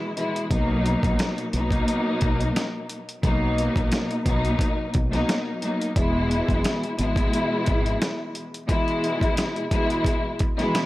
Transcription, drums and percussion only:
0.17 closed hi-hat medium
0.36 closed hi-hat medium
0.51 kick loud
0.51 closed hi-hat medium
0.86 closed hi-hat medium
1.03 kick medium
1.03 closed hi-hat soft
1.19 snare loud
1.19 closed hi-hat loud
1.38 closed hi-hat soft
1.53 closed hi-hat medium
1.71 kick medium
1.71 closed hi-hat medium
1.88 closed hi-hat medium
2.21 kick loud
2.21 closed hi-hat medium
2.41 closed hi-hat medium
2.56 snare loud
2.56 closed hi-hat medium
2.89 closed hi-hat medium
3.09 closed hi-hat medium
3.23 kick loud
3.23 closed hi-hat medium
3.58 closed hi-hat medium
3.76 kick loud
3.76 closed hi-hat soft
3.92 snare loud
3.92 closed hi-hat loud
4.11 closed hi-hat soft
4.26 kick medium
4.26 closed hi-hat medium
4.45 closed hi-hat medium
4.59 kick loud
4.59 closed hi-hat medium
4.94 kick loud
4.94 closed hi-hat medium
5.13 snare soft
5.13 closed hi-hat medium
5.29 snare loud
5.29 closed hi-hat loud
5.62 closed hi-hat medium
5.82 closed hi-hat medium
5.96 kick loud
5.96 closed hi-hat medium
6.31 closed hi-hat medium
6.49 kick medium
6.49 closed hi-hat soft
6.64 snare loud
6.64 closed hi-hat loud
6.83 closed hi-hat soft
6.99 closed hi-hat medium
7.16 kick medium
7.16 closed hi-hat medium
7.33 closed hi-hat medium
7.66 kick loud
7.66 closed hi-hat medium
7.86 closed hi-hat medium
8.02 snare loud
8.02 closed hi-hat loud
8.35 closed hi-hat medium
8.54 closed hi-hat medium
8.69 kick loud
8.69 closed hi-hat medium
8.88 closed hi-hat soft
9.04 closed hi-hat medium
9.21 kick medium
9.21 closed hi-hat soft
9.37 snare loud
9.37 closed hi-hat loud
9.56 closed hi-hat soft
9.71 kick medium
9.71 closed hi-hat medium
9.90 closed hi-hat medium
10.04 kick loud
10.04 closed hi-hat medium
10.39 kick loud
10.39 closed hi-hat medium
10.59 snare soft
10.59 closed hi-hat medium
10.75 snare loud
10.75 closed hi-hat loud

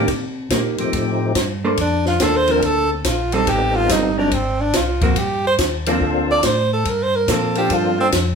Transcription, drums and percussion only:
0.08 kick soft
0.08 ride medium
0.50 kick soft
0.50 snare medium
0.50 hi-hat pedal medium
0.50 ride medium
0.78 ride soft
0.93 kick soft
0.93 ride medium
1.35 kick soft
1.35 snare medium
1.35 hi-hat pedal soft
1.35 ride medium
1.77 kick soft
1.77 ride medium
2.06 snare soft
2.20 kick soft
2.20 snare medium
2.20 hi-hat pedal soft
2.20 ride medium
2.47 ride soft
2.62 kick soft
2.62 ride medium
3.04 kick soft
3.04 snare medium
3.04 hi-hat pedal medium
3.04 ride medium
3.32 ride soft
3.47 kick soft
3.47 ride medium
3.89 kick soft
3.89 snare medium
3.89 hi-hat pedal medium
3.89 ride medium
4.31 kick soft
4.31 ride medium
4.73 kick soft
4.73 snare medium
4.73 hi-hat pedal medium
4.73 ride medium
5.01 kick medium
5.01 ride medium
5.16 kick soft
5.16 ride medium
5.58 kick soft
5.58 snare medium
5.58 hi-hat pedal medium
5.58 ride medium
5.86 ride medium
6.01 kick soft
6.43 kick soft
6.43 snare medium
6.43 hi-hat pedal medium
6.43 ride medium
6.85 kick soft
6.85 ride medium
7.28 kick soft
7.28 snare medium
7.28 hi-hat pedal medium
7.28 ride medium
7.55 ride soft
7.70 kick soft
7.70 ride medium
8.12 kick soft
8.12 snare medium
8.12 hi-hat pedal medium
8.12 ride medium

